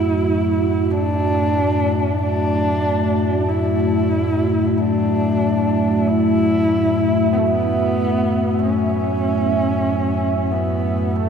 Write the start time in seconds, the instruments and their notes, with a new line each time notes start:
Already playing: synth drone F#2 F#3, ambient pad A3 F#4 E5, horsehead fiddle E4
0.91 horsehead fiddle D4
2.22 horsehead fiddle D4
3.48 horsehead fiddle E4
4.78 horsehead fiddle D4
6.08 horsehead fiddle E4
7.33 horsehead fiddle B3
7.39 horsehead fiddle A3
7.46 horsehead fiddle B3
8.62 horsehead fiddle C#4
10.51 horsehead fiddle B3
11.16 horsehead fiddle A3